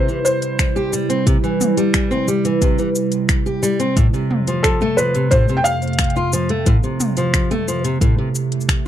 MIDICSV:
0, 0, Header, 1, 5, 480
1, 0, Start_track
1, 0, Tempo, 674157
1, 905, Time_signature, 4, 2, 24, 8
1, 6320, End_track
2, 0, Start_track
2, 0, Title_t, "Felt piano"
2, 0, Program_c, 0, 0
2, 0, Note_on_c, 0, 72, 93
2, 165, Note_off_c, 0, 72, 0
2, 176, Note_on_c, 0, 72, 91
2, 632, Note_off_c, 0, 72, 0
2, 3296, Note_on_c, 0, 69, 77
2, 3539, Note_on_c, 0, 71, 84
2, 3548, Note_off_c, 0, 69, 0
2, 3765, Note_off_c, 0, 71, 0
2, 3779, Note_on_c, 0, 72, 94
2, 3964, Note_on_c, 0, 79, 83
2, 3978, Note_off_c, 0, 72, 0
2, 4016, Note_on_c, 0, 77, 110
2, 4019, Note_off_c, 0, 79, 0
2, 4472, Note_off_c, 0, 77, 0
2, 6320, End_track
3, 0, Start_track
3, 0, Title_t, "Ambient pad"
3, 0, Program_c, 1, 92
3, 0, Note_on_c, 1, 48, 81
3, 0, Note_on_c, 1, 55, 73
3, 0, Note_on_c, 1, 64, 90
3, 2794, Note_off_c, 1, 55, 0
3, 2794, Note_off_c, 1, 64, 0
3, 2826, Note_on_c, 1, 41, 85
3, 2827, Note_on_c, 1, 57, 89
3, 6320, Note_off_c, 1, 41, 0
3, 6320, Note_off_c, 1, 48, 0
3, 6320, Note_off_c, 1, 57, 0
3, 6320, End_track
4, 0, Start_track
4, 0, Title_t, "Steel-string acoustic guitar"
4, 0, Program_c, 2, 25
4, 60, Note_on_c, 2, 52, 70
4, 131, Note_off_c, 2, 52, 0
4, 541, Note_on_c, 2, 67, 79
4, 651, Note_off_c, 2, 67, 0
4, 661, Note_on_c, 2, 55, 75
4, 771, Note_off_c, 2, 55, 0
4, 780, Note_on_c, 2, 60, 75
4, 890, Note_off_c, 2, 60, 0
4, 901, Note_on_c, 2, 48, 95
4, 971, Note_off_c, 2, 48, 0
4, 1023, Note_on_c, 2, 52, 77
4, 1252, Note_off_c, 2, 52, 0
4, 1262, Note_on_c, 2, 55, 79
4, 1492, Note_off_c, 2, 55, 0
4, 1501, Note_on_c, 2, 60, 77
4, 1611, Note_off_c, 2, 60, 0
4, 1623, Note_on_c, 2, 55, 71
4, 1732, Note_off_c, 2, 55, 0
4, 1744, Note_on_c, 2, 52, 69
4, 1853, Note_off_c, 2, 52, 0
4, 1865, Note_on_c, 2, 48, 88
4, 1973, Note_off_c, 2, 48, 0
4, 1983, Note_on_c, 2, 52, 73
4, 2053, Note_off_c, 2, 52, 0
4, 2464, Note_on_c, 2, 67, 74
4, 2573, Note_off_c, 2, 67, 0
4, 2582, Note_on_c, 2, 55, 81
4, 2692, Note_off_c, 2, 55, 0
4, 2703, Note_on_c, 2, 60, 76
4, 2812, Note_off_c, 2, 60, 0
4, 2823, Note_on_c, 2, 45, 103
4, 2892, Note_off_c, 2, 45, 0
4, 2945, Note_on_c, 2, 48, 77
4, 3173, Note_off_c, 2, 48, 0
4, 3187, Note_on_c, 2, 53, 74
4, 3414, Note_off_c, 2, 53, 0
4, 3430, Note_on_c, 2, 57, 87
4, 3535, Note_off_c, 2, 57, 0
4, 3549, Note_on_c, 2, 53, 73
4, 3655, Note_off_c, 2, 53, 0
4, 3668, Note_on_c, 2, 48, 74
4, 3774, Note_off_c, 2, 48, 0
4, 3788, Note_on_c, 2, 45, 85
4, 3895, Note_off_c, 2, 45, 0
4, 3911, Note_on_c, 2, 48, 76
4, 3976, Note_off_c, 2, 48, 0
4, 4389, Note_on_c, 2, 65, 78
4, 4495, Note_off_c, 2, 65, 0
4, 4508, Note_on_c, 2, 53, 81
4, 4615, Note_off_c, 2, 53, 0
4, 4629, Note_on_c, 2, 57, 75
4, 4735, Note_off_c, 2, 57, 0
4, 4748, Note_on_c, 2, 45, 97
4, 4815, Note_off_c, 2, 45, 0
4, 4868, Note_on_c, 2, 48, 68
4, 5095, Note_off_c, 2, 48, 0
4, 5107, Note_on_c, 2, 53, 74
4, 5334, Note_off_c, 2, 53, 0
4, 5348, Note_on_c, 2, 57, 79
4, 5455, Note_off_c, 2, 57, 0
4, 5469, Note_on_c, 2, 53, 69
4, 5575, Note_off_c, 2, 53, 0
4, 5586, Note_on_c, 2, 48, 76
4, 5694, Note_off_c, 2, 48, 0
4, 5708, Note_on_c, 2, 45, 84
4, 5814, Note_off_c, 2, 45, 0
4, 5827, Note_on_c, 2, 48, 71
4, 5895, Note_off_c, 2, 48, 0
4, 6320, End_track
5, 0, Start_track
5, 0, Title_t, "Drums"
5, 62, Note_on_c, 9, 69, 22
5, 134, Note_off_c, 9, 69, 0
5, 181, Note_on_c, 9, 69, 71
5, 252, Note_off_c, 9, 69, 0
5, 300, Note_on_c, 9, 42, 44
5, 301, Note_on_c, 9, 69, 31
5, 371, Note_off_c, 9, 42, 0
5, 373, Note_off_c, 9, 69, 0
5, 421, Note_on_c, 9, 26, 103
5, 421, Note_on_c, 9, 42, 56
5, 422, Note_on_c, 9, 36, 98
5, 422, Note_on_c, 9, 69, 46
5, 492, Note_off_c, 9, 26, 0
5, 492, Note_off_c, 9, 42, 0
5, 493, Note_off_c, 9, 36, 0
5, 494, Note_off_c, 9, 69, 0
5, 542, Note_on_c, 9, 69, 23
5, 613, Note_off_c, 9, 69, 0
5, 662, Note_on_c, 9, 69, 78
5, 733, Note_off_c, 9, 69, 0
5, 782, Note_on_c, 9, 42, 45
5, 783, Note_on_c, 9, 69, 31
5, 853, Note_off_c, 9, 42, 0
5, 855, Note_off_c, 9, 69, 0
5, 902, Note_on_c, 9, 36, 111
5, 903, Note_on_c, 9, 42, 58
5, 904, Note_on_c, 9, 69, 44
5, 974, Note_off_c, 9, 36, 0
5, 974, Note_off_c, 9, 42, 0
5, 975, Note_off_c, 9, 69, 0
5, 1024, Note_on_c, 9, 69, 22
5, 1096, Note_off_c, 9, 69, 0
5, 1144, Note_on_c, 9, 45, 77
5, 1145, Note_on_c, 9, 69, 77
5, 1215, Note_off_c, 9, 45, 0
5, 1216, Note_off_c, 9, 69, 0
5, 1264, Note_on_c, 9, 42, 47
5, 1265, Note_on_c, 9, 69, 34
5, 1335, Note_off_c, 9, 42, 0
5, 1336, Note_off_c, 9, 69, 0
5, 1381, Note_on_c, 9, 26, 108
5, 1381, Note_on_c, 9, 42, 54
5, 1382, Note_on_c, 9, 69, 47
5, 1383, Note_on_c, 9, 36, 104
5, 1452, Note_off_c, 9, 26, 0
5, 1452, Note_off_c, 9, 42, 0
5, 1453, Note_off_c, 9, 69, 0
5, 1454, Note_off_c, 9, 36, 0
5, 1503, Note_on_c, 9, 45, 72
5, 1504, Note_on_c, 9, 69, 22
5, 1574, Note_off_c, 9, 45, 0
5, 1575, Note_off_c, 9, 69, 0
5, 1623, Note_on_c, 9, 69, 81
5, 1694, Note_off_c, 9, 69, 0
5, 1744, Note_on_c, 9, 42, 47
5, 1745, Note_on_c, 9, 69, 36
5, 1815, Note_off_c, 9, 42, 0
5, 1816, Note_off_c, 9, 69, 0
5, 1863, Note_on_c, 9, 36, 108
5, 1863, Note_on_c, 9, 42, 54
5, 1864, Note_on_c, 9, 69, 43
5, 1934, Note_off_c, 9, 36, 0
5, 1934, Note_off_c, 9, 42, 0
5, 1935, Note_off_c, 9, 69, 0
5, 1983, Note_on_c, 9, 69, 25
5, 2054, Note_off_c, 9, 69, 0
5, 2103, Note_on_c, 9, 69, 74
5, 2174, Note_off_c, 9, 69, 0
5, 2219, Note_on_c, 9, 42, 44
5, 2220, Note_on_c, 9, 69, 35
5, 2290, Note_off_c, 9, 42, 0
5, 2291, Note_off_c, 9, 69, 0
5, 2342, Note_on_c, 9, 26, 98
5, 2342, Note_on_c, 9, 42, 56
5, 2343, Note_on_c, 9, 36, 110
5, 2343, Note_on_c, 9, 69, 47
5, 2413, Note_off_c, 9, 26, 0
5, 2413, Note_off_c, 9, 42, 0
5, 2414, Note_off_c, 9, 36, 0
5, 2414, Note_off_c, 9, 69, 0
5, 2465, Note_on_c, 9, 69, 23
5, 2536, Note_off_c, 9, 69, 0
5, 2585, Note_on_c, 9, 69, 86
5, 2656, Note_off_c, 9, 69, 0
5, 2704, Note_on_c, 9, 42, 45
5, 2705, Note_on_c, 9, 69, 33
5, 2775, Note_off_c, 9, 42, 0
5, 2776, Note_off_c, 9, 69, 0
5, 2824, Note_on_c, 9, 36, 116
5, 2825, Note_on_c, 9, 42, 54
5, 2826, Note_on_c, 9, 69, 44
5, 2895, Note_off_c, 9, 36, 0
5, 2896, Note_off_c, 9, 42, 0
5, 2897, Note_off_c, 9, 69, 0
5, 2946, Note_on_c, 9, 69, 23
5, 3017, Note_off_c, 9, 69, 0
5, 3065, Note_on_c, 9, 45, 74
5, 3136, Note_off_c, 9, 45, 0
5, 3186, Note_on_c, 9, 42, 41
5, 3187, Note_on_c, 9, 69, 33
5, 3257, Note_off_c, 9, 42, 0
5, 3258, Note_off_c, 9, 69, 0
5, 3305, Note_on_c, 9, 26, 105
5, 3305, Note_on_c, 9, 36, 103
5, 3305, Note_on_c, 9, 42, 53
5, 3306, Note_on_c, 9, 69, 46
5, 3376, Note_off_c, 9, 26, 0
5, 3376, Note_off_c, 9, 36, 0
5, 3376, Note_off_c, 9, 42, 0
5, 3377, Note_off_c, 9, 69, 0
5, 3424, Note_on_c, 9, 45, 67
5, 3425, Note_on_c, 9, 69, 21
5, 3495, Note_off_c, 9, 45, 0
5, 3496, Note_off_c, 9, 69, 0
5, 3546, Note_on_c, 9, 69, 77
5, 3617, Note_off_c, 9, 69, 0
5, 3664, Note_on_c, 9, 42, 42
5, 3665, Note_on_c, 9, 69, 36
5, 3735, Note_off_c, 9, 42, 0
5, 3736, Note_off_c, 9, 69, 0
5, 3784, Note_on_c, 9, 42, 53
5, 3785, Note_on_c, 9, 36, 105
5, 3785, Note_on_c, 9, 69, 43
5, 3855, Note_off_c, 9, 42, 0
5, 3856, Note_off_c, 9, 36, 0
5, 3856, Note_off_c, 9, 69, 0
5, 3905, Note_on_c, 9, 69, 23
5, 3976, Note_off_c, 9, 69, 0
5, 4024, Note_on_c, 9, 69, 72
5, 4096, Note_off_c, 9, 69, 0
5, 4144, Note_on_c, 9, 42, 19
5, 4145, Note_on_c, 9, 69, 32
5, 4183, Note_off_c, 9, 42, 0
5, 4183, Note_on_c, 9, 42, 21
5, 4216, Note_off_c, 9, 69, 0
5, 4224, Note_off_c, 9, 42, 0
5, 4224, Note_on_c, 9, 42, 24
5, 4262, Note_off_c, 9, 42, 0
5, 4262, Note_on_c, 9, 26, 106
5, 4262, Note_on_c, 9, 42, 54
5, 4263, Note_on_c, 9, 69, 50
5, 4265, Note_on_c, 9, 36, 101
5, 4302, Note_off_c, 9, 42, 0
5, 4302, Note_on_c, 9, 42, 34
5, 4333, Note_off_c, 9, 26, 0
5, 4335, Note_off_c, 9, 69, 0
5, 4336, Note_off_c, 9, 36, 0
5, 4343, Note_off_c, 9, 42, 0
5, 4343, Note_on_c, 9, 42, 38
5, 4387, Note_on_c, 9, 69, 24
5, 4414, Note_off_c, 9, 42, 0
5, 4458, Note_off_c, 9, 69, 0
5, 4505, Note_on_c, 9, 69, 84
5, 4576, Note_off_c, 9, 69, 0
5, 4623, Note_on_c, 9, 42, 43
5, 4694, Note_off_c, 9, 42, 0
5, 4744, Note_on_c, 9, 42, 53
5, 4745, Note_on_c, 9, 36, 118
5, 4745, Note_on_c, 9, 69, 43
5, 4815, Note_off_c, 9, 42, 0
5, 4816, Note_off_c, 9, 69, 0
5, 4817, Note_off_c, 9, 36, 0
5, 4866, Note_on_c, 9, 69, 24
5, 4938, Note_off_c, 9, 69, 0
5, 4985, Note_on_c, 9, 45, 80
5, 4986, Note_on_c, 9, 69, 78
5, 5056, Note_off_c, 9, 45, 0
5, 5057, Note_off_c, 9, 69, 0
5, 5103, Note_on_c, 9, 42, 42
5, 5104, Note_on_c, 9, 69, 34
5, 5174, Note_off_c, 9, 42, 0
5, 5175, Note_off_c, 9, 69, 0
5, 5224, Note_on_c, 9, 26, 101
5, 5224, Note_on_c, 9, 42, 58
5, 5225, Note_on_c, 9, 36, 102
5, 5225, Note_on_c, 9, 69, 46
5, 5296, Note_off_c, 9, 26, 0
5, 5296, Note_off_c, 9, 36, 0
5, 5296, Note_off_c, 9, 42, 0
5, 5297, Note_off_c, 9, 69, 0
5, 5348, Note_on_c, 9, 42, 29
5, 5348, Note_on_c, 9, 45, 72
5, 5349, Note_on_c, 9, 69, 23
5, 5419, Note_off_c, 9, 42, 0
5, 5419, Note_off_c, 9, 45, 0
5, 5420, Note_off_c, 9, 69, 0
5, 5469, Note_on_c, 9, 69, 74
5, 5540, Note_off_c, 9, 69, 0
5, 5586, Note_on_c, 9, 42, 44
5, 5587, Note_on_c, 9, 69, 34
5, 5657, Note_off_c, 9, 42, 0
5, 5658, Note_off_c, 9, 69, 0
5, 5705, Note_on_c, 9, 36, 112
5, 5707, Note_on_c, 9, 42, 51
5, 5708, Note_on_c, 9, 69, 43
5, 5776, Note_off_c, 9, 36, 0
5, 5778, Note_off_c, 9, 42, 0
5, 5779, Note_off_c, 9, 69, 0
5, 5946, Note_on_c, 9, 69, 69
5, 6017, Note_off_c, 9, 69, 0
5, 6066, Note_on_c, 9, 42, 40
5, 6127, Note_on_c, 9, 69, 34
5, 6137, Note_off_c, 9, 42, 0
5, 6185, Note_on_c, 9, 36, 106
5, 6188, Note_on_c, 9, 26, 101
5, 6188, Note_on_c, 9, 42, 53
5, 6189, Note_off_c, 9, 69, 0
5, 6189, Note_on_c, 9, 69, 43
5, 6256, Note_off_c, 9, 36, 0
5, 6259, Note_off_c, 9, 26, 0
5, 6259, Note_off_c, 9, 42, 0
5, 6260, Note_off_c, 9, 69, 0
5, 6320, End_track
0, 0, End_of_file